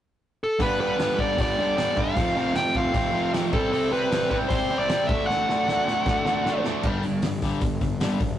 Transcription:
0.44 A4
0.60 G2 D3 G3 B3 D4 B4, kick, open hi-hat
0.79 G2 D3 G3 B3 D4 B4
0.99 G2 D3 G3 B3 D4, snare, open hi-hat
1.19 G2 D3 G3 B3 D4 D5, kick
1.38 G2 D3 G3 B3 D4 D5, kick, open hi-hat
1.58 G2 D3 G3 B3 D4
1.77 G2 D3 G3 B3 D4 D5, snare, open hi-hat
1.97 G2 D3 G3 B3 D4 F5, kick
2.16 F2 C3 F3 A3 C4, kick, open hi-hat
2.36 F2 C3 F3 A3 C4
2.55 F2 C3 F3 A3 C4 G5, snare, open hi-hat
2.74 F2 C3 F3 A3 C4 F5, kick
2.93 F2 C3 F3 A3 C4, kick, open hi-hat
3.13 F2 C3 F3 A3 C4
3.32 F2 C3 F3 A3 C4, snare, open hi-hat
3.52 C3 G3 C4 E4 A4, kick
3.72 C3 G3 C4 E4, open hi-hat
3.90 C3 G3 C4 E4 B4
4.10 C3 G3 C4 E4, snare, open hi-hat
4.30 C3 G3 C4 E4 B4, kick
4.49 C3 G3 C4 E4 C5, kick, open hi-hat
4.69 C3 G3 C4 E4
4.79 D5
4.89 C3 G3 C4 E4, snare, open hi-hat
5.07 D3 F#3 A3 D4 E5, kick
5.27 D3 F#3 A3 D4 F#5, snare
5.47 D3 F#3 A3 D4, snare
5.67 D3 F#3 A3 D4, snare
5.86 D3 F#3 A3 D4, snare
6.05 D3 F#3 A3 D4, kick, snare
6.25 D3 F#3 A3 D4, snare
6.44 D3 F#3 A3 D4, snare
6.63 D3 F#3 A3 D4, snare
6.83 G1 G2 D3 G3, kick, crash
7.03 G1 G2 D3, open hi-hat
7.22 G1 G2 D3, snare, open hi-hat
7.42 G1 G2 D3 G3, kick, open hi-hat
7.61 G1 G2 D3, kick, open hi-hat
7.81 G1 G2 D3, kick, open hi-hat
8.00 G1 G2 D3 G3, snare, open hi-hat
8.20 F#1 G2 D3, kick, open hi-hat

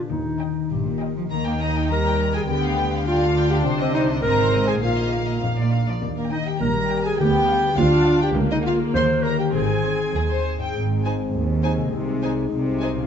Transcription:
Already playing: A#2 D4 B4
0.09 D#2 D#3 D#4
0.40 D#4 D#5 G5
0.70 A#1 G2 G4
0.85 A#2
1.01 D#4 A#4 D#5 G5
1.17 F3
1.31 D#2 D#3 A#3 A#5
1.45 A#3 A#4 G5
1.61 D#4 D#5 A#5
1.76 G5
1.90 G3 A#4 A#5
2.06 G5
2.20 G4 A#5
2.34 G#4 G5 G#5
2.49 D2 D3 B3 G4 G5
2.64 F5
2.79 G3 G5
2.94 F5
3.07 D4 F4 F5 G5
3.22 F5
3.36 B4 G5
3.51 G4 F5 G5
3.65 C2 C3 C5
3.80 C4 C5 D#5
3.94 D#4 C5 D#5
4.08 D#5
4.22 G#1 G#2 C4 A#4 D#5 A#5
4.38 C5
4.53 D#4 C5 D#5
4.67 G#4 C5 G#5
4.82 A#1 A#2 A#3 F4 F5
4.97 D#5
5.12 D#4 A#4 F5
5.27 D#5
5.42 F2 A#2 F5
5.57 A#2 D5
5.72 D4 A#4 F5
5.87 F3 D5
6.02 D#2 D#3
6.17 A#3 A#4
6.30 D#4 D#5 G5
6.46 G4 G5
6.61 A#1 A#2 G3 A#4 A#5
6.91 G4 G5
7.05 G#4 G#5
7.19 D2 D3 B3 G4 G5
7.49 G3 F5
7.72 G4
7.77 D2 D4 F4 F5
8.07 B4 F5
8.22 G4 G5
8.36 C#2 C#3 A#3
8.52 D#4 D#5
8.65 F4 A#4 F5
8.94 D#2 D#3 C5 C6
9.23 D#4 G4 A#4 C#5 A#5
9.40 G4 G5
9.54 G#1 G#2 C4 G#4 G#5
9.84 C4 C5
10.15 D#2 D#4 G#4
10.30 C5
10.46 G#4
10.58 G#2 G5
10.63 C4
10.67 D#4
10.72 G#1 G#2 G#3 C4 G#4
11.05 D#4 C5 G#5
11.34 D#2
11.64 D#4 C5 G#5
11.76 C3
11.80 C4
11.85 D#4
11.89 C2 C3 G#4
11.94 D#4
12.23 D#4 C5 G#5
12.52 C2 C3
12.81 D#4 C5 G#5
12.93 A#2
12.98 C#4
13.02 F4

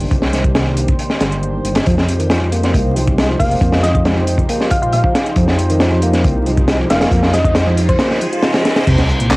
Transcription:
Already playing: D#3 A#3 D4 G4 C5
0.00 closed hi-hat
0.11 C2, kick, closed hi-hat
0.22 snare
0.33 snare, closed hi-hat
0.44 kick, closed hi-hat
0.55 snare, closed hi-hat
0.77 closed hi-hat
0.88 kick, closed hi-hat
0.99 closed hi-hat
1.10 snare
1.20 G1, snare, closed hi-hat
1.32 closed hi-hat
1.43 closed hi-hat
1.65 G1, closed hi-hat
1.75 snare, closed hi-hat
1.86 F2 F3 G#3 D#4 G4, kick, closed hi-hat
1.98 snare
2.08 closed hi-hat
2.19 D#3, closed hi-hat
2.30 F3, snare, closed hi-hat
2.41 F3
2.52 A#3, closed hi-hat
2.63 snare, closed hi-hat
2.74 C2, kick, closed hi-hat
2.96 F3, closed hi-hat
3.07 kick, closed hi-hat
3.18 G#3, snare, closed hi-hat
3.29 F3
3.39 F1 A#3 F5, kick, closed hi-hat, open hi-hat
3.51 closed hi-hat
3.61 F2 A#3, kick, closed hi-hat
3.72 snare
3.83 F3 D#5, snare, closed hi-hat
3.94 D#5, kick, closed hi-hat
4.05 G#3, snare, closed hi-hat
4.17 F3
4.27 closed hi-hat
4.38 kick, closed hi-hat
4.49 A#3, closed hi-hat
4.61 snare
4.71 F3 F5, kick, closed hi-hat
4.82 A#2 F4 F5, closed hi-hat
4.93 A#2 F5, closed hi-hat
5.04 F3, kick
5.15 snare, closed hi-hat
5.26 closed hi-hat
5.36 F2 F3, kick, closed hi-hat, riser
5.48 snare
5.59 closed hi-hat
5.70 D#3, closed hi-hat
5.80 F3, snare, closed hi-hat
5.92 F3
6.02 A#3, closed hi-hat
6.13 snare, closed hi-hat
6.24 C2, kick, closed hi-hat
6.46 F3, closed hi-hat
6.57 kick, closed hi-hat
6.68 G#3, snare, closed hi-hat
6.79 F3
6.90 F1 A#3 F5, snare, closed hi-hat
7.01 snare, closed hi-hat
7.11 F2 A#3, kick, closed hi-hat
7.23 snare
7.33 F3 D#5, snare, closed hi-hat
7.45 D#5, kick, closed hi-hat
7.55 G#3, snare, closed hi-hat
7.67 F3
7.77 closed hi-hat
7.89 C5, kick, closed hi-hat
7.99 A#3 C5, snare, closed hi-hat
8.11 snare
8.21 F3, closed hi-hat
8.33 F4, closed hi-hat
8.43 snare, closed hi-hat
8.54 F3, snare, closed hi-hat
8.65 snare, closed hi-hat
8.76 snare, closed hi-hat
8.87 C2 C3 D#3 A#3 D4 G4 C5, kick, closed hi-hat, crash, sub drop
8.98 snare, closed hi-hat
9.09 closed hi-hat
9.20 A#2, closed hi-hat
9.30 C3, snare, clap, closed hi-hat

